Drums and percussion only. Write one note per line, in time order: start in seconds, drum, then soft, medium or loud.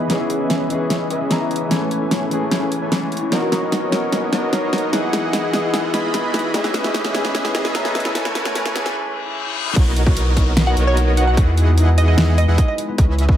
0.10 snare medium
0.10 closed hi-hat medium
0.30 closed hi-hat medium
0.50 snare medium
0.50 closed hi-hat medium
0.70 closed hi-hat medium
0.90 snare medium
0.90 closed hi-hat medium
1.10 closed hi-hat medium
1.31 snare medium
1.31 closed hi-hat medium
1.51 closed hi-hat soft
1.56 closed hi-hat medium
1.71 snare medium
1.71 closed hi-hat medium
1.91 closed hi-hat medium
2.11 snare medium
2.11 closed hi-hat medium
2.31 closed hi-hat medium
2.51 snare medium
2.51 closed hi-hat medium
2.72 closed hi-hat medium
2.92 snare medium
2.92 closed hi-hat medium
3.12 closed hi-hat soft
3.17 closed hi-hat medium
3.32 snare medium
3.32 closed hi-hat medium
3.52 snare medium
3.52 closed hi-hat medium
3.72 snare medium
3.72 closed hi-hat medium
3.92 snare medium
3.92 closed hi-hat medium
4.12 snare medium
4.12 closed hi-hat medium
4.33 snare medium
4.33 closed hi-hat medium
4.53 snare medium
4.53 closed hi-hat medium
4.73 snare medium
4.73 closed hi-hat soft
4.78 closed hi-hat medium
4.93 snare medium
4.93 closed hi-hat medium
5.13 snare medium
5.13 closed hi-hat medium
5.33 snare medium
5.33 closed hi-hat medium
5.53 snare medium
5.53 closed hi-hat medium
5.74 snare medium
5.74 closed hi-hat medium
5.94 snare medium
5.94 closed hi-hat medium
6.14 snare medium
6.14 closed hi-hat medium
6.34 snare medium
6.34 closed hi-hat soft
6.39 closed hi-hat medium
6.54 snare loud
6.54 closed hi-hat medium
6.64 snare medium
6.74 snare medium
6.74 closed hi-hat medium
6.84 snare medium
6.94 snare medium
6.94 closed hi-hat medium
7.05 snare medium
7.15 snare medium
7.15 closed hi-hat medium
7.25 snare medium
7.35 snare loud
7.35 closed hi-hat medium
7.45 snare medium
7.55 snare medium
7.55 closed hi-hat medium
7.65 snare medium
7.75 snare loud
7.75 closed hi-hat medium
7.85 snare medium
7.95 snare loud
7.95 closed hi-hat soft
8.00 closed hi-hat medium
8.05 snare medium
8.15 snare loud
8.15 closed hi-hat medium
8.25 snare medium
8.35 snare loud
8.35 closed hi-hat medium
8.45 snare loud
8.55 snare loud
8.55 closed hi-hat medium
8.66 snare loud
8.76 snare loud
8.76 closed hi-hat medium
8.86 snare loud
9.76 kick loud
9.76 closed hi-hat medium
9.76 crash loud
9.96 closed hi-hat medium
10.07 kick loud
10.17 closed hi-hat medium
10.37 kick medium
10.37 closed hi-hat medium
10.57 snare loud
10.57 closed hi-hat medium
10.77 closed hi-hat medium
10.97 closed hi-hat medium
11.17 closed hi-hat medium
11.37 kick loud
11.37 closed hi-hat medium
11.57 closed hi-hat medium
11.78 closed hi-hat medium
11.98 closed hi-hat medium
12.18 snare loud
12.18 closed hi-hat medium
12.38 closed hi-hat medium
12.58 kick loud
12.58 closed hi-hat medium
12.78 closed hi-hat medium
12.98 kick loud
12.98 closed hi-hat medium
13.19 closed hi-hat medium
13.29 kick loud